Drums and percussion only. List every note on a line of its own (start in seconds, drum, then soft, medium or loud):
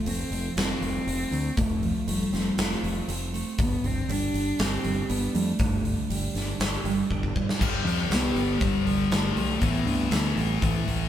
0.06 open hi-hat medium
0.32 open hi-hat medium
0.57 snare loud
0.57 open hi-hat medium
0.82 open hi-hat soft
1.08 open hi-hat medium
1.32 open hi-hat soft
1.57 kick loud
1.57 open hi-hat medium
1.83 open hi-hat soft
2.08 open hi-hat medium
2.33 snare soft
2.33 open hi-hat soft
2.58 snare loud
2.58 open hi-hat medium
2.84 open hi-hat medium
3.09 open hi-hat medium
3.34 open hi-hat medium
3.58 kick loud
3.58 open hi-hat medium
3.84 open hi-hat soft
4.09 open hi-hat medium
4.34 open hi-hat medium
4.59 snare loud
4.59 open hi-hat medium
4.84 open hi-hat medium
5.10 open hi-hat medium
5.35 open hi-hat medium
5.59 kick loud
5.59 open hi-hat medium
5.85 open hi-hat medium
6.10 open hi-hat medium
6.35 snare soft
6.35 open hi-hat medium
6.60 snare loud
6.60 open hi-hat medium
6.85 open hi-hat soft
7.11 kick medium
7.23 kick medium
7.36 kick medium
7.49 snare medium
7.61 kick loud
7.61 crash loud
7.87 open hi-hat medium
8.11 snare loud
8.11 open hi-hat medium
8.36 open hi-hat medium
8.61 kick loud
8.61 open hi-hat medium
8.87 open hi-hat medium
9.11 snare loud
9.11 open hi-hat medium
9.37 open hi-hat medium
9.61 kick loud
9.61 open hi-hat medium
9.87 open hi-hat medium
10.11 snare loud
10.11 open hi-hat medium
10.38 open hi-hat medium
10.62 kick loud
10.62 open hi-hat medium
10.88 open hi-hat soft